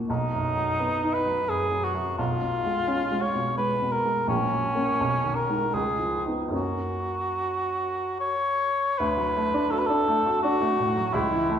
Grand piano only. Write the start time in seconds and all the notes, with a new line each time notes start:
Already playing: D#2 A#2 F#3 A#3 D#4
0.10 B1
0.33 F#2
0.57 F#3
0.79 B3
1.04 D#4
1.26 F#3
1.49 F#2
1.71 F#3
1.95 F#2
2.18 B1
2.42 B2
2.65 G#3
2.88 C#4
3.11 G#3
3.35 B2
3.58 G#3
3.81 B2
4.05 G#3
4.28 A#1
4.52 F#3
4.75 A#3 C#4
5.00 B1
5.24 D#3
5.49 G#3 D#4
5.74 C#2
5.99 F3
6.26 B3 D#4
6.48 F#2 F#3 A#3 C#4
9.00 D2
9.17 F#3
9.37 A3
9.54 D4
9.72 F#4
9.90 D4
10.08 A3
10.26 F#4
10.44 D4
10.61 A3
10.79 A2
10.97 F#3
11.14 C#2
11.32 E3
11.50 A3